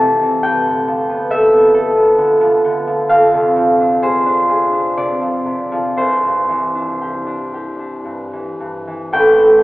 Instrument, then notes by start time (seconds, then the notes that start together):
harp
Already playing: F2 E3 A3 G4 F5 G5 A5
0.01 C3
0.21 E3
0.43 G2 G5
0.66 D3
0.88 F3
1.10 B3
1.30 A4 E5
1.52 B3
1.74 A4
1.96 B3
2.18 D3
2.41 F3
2.64 D3
2.87 F3
3.09 F2 F5
3.34 C3
3.56 F3
3.80 D4
4.02 G#4 C5
4.26 D4
4.49 G#4
4.72 D4
4.97 C3 D5
5.21 F3
5.46 C3
5.72 F3
5.97 C2 C5
6.23 G2
6.49 E3
6.75 D4
7.01 G4
7.27 D4
7.54 G4
7.79 D4
8.05 G2
8.33 E3
8.60 G2
8.87 E3
9.12 A1 A2 G5
9.38 A3